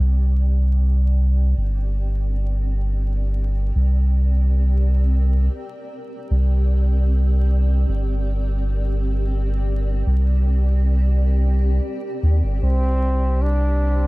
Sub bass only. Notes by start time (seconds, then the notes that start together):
0.00 C2
1.57 G1
3.75 C2
6.31 C2
7.88 G1
10.07 C2
12.23 D#2
12.44 G1
12.62 C2